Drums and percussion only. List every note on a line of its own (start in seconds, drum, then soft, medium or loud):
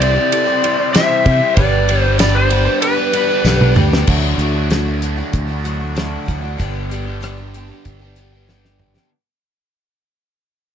0.02 ride medium
0.32 ride medium
0.64 ride medium
0.94 snare loud
0.94 ride medium
0.94 tambourine medium
1.26 kick medium
1.26 ride medium
1.57 kick loud
1.57 ride medium
1.89 ride medium
2.19 snare loud
2.19 ride medium
2.19 tambourine medium
2.50 ride medium
2.82 ride loud
3.13 ride medium
3.45 snare medium
3.45 tambourine loud
3.61 mid tom medium
3.76 mid tom medium
3.93 snare medium
4.07 kick loud
4.07 crash medium
4.39 closed hi-hat medium
4.70 snare medium
4.70 closed hi-hat medium
5.02 closed hi-hat medium
5.33 kick medium
5.33 closed hi-hat medium
5.65 closed hi-hat medium
5.97 snare medium
5.97 closed hi-hat medium
6.28 kick medium
6.28 closed hi-hat soft
6.60 kick medium
6.60 closed hi-hat medium
6.91 closed hi-hat soft
7.23 cross-stick medium
7.23 closed hi-hat medium
7.54 closed hi-hat medium
7.85 kick medium
7.85 closed hi-hat medium
8.16 closed hi-hat soft
8.49 snare soft
8.65 snare soft
8.79 mid tom medium
8.97 snare medium